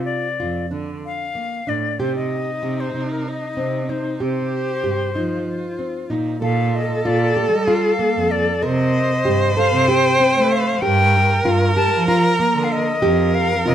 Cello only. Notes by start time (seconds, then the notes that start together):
0.42 F2
0.72 D3
1.68 A2
1.99 C3
2.62 C3
2.94 C3
3.57 C3
4.20 C3
4.85 G2
5.16 F3
6.11 A#2
6.42 A#2
7.05 A#2
7.53 G3
8.15 F2
8.64 C3
9.26 G2
9.73 C3
10.36 A3
10.83 G2
11.45 G2
11.92 F3
12.56 D3
13.02 F2
13.66 C3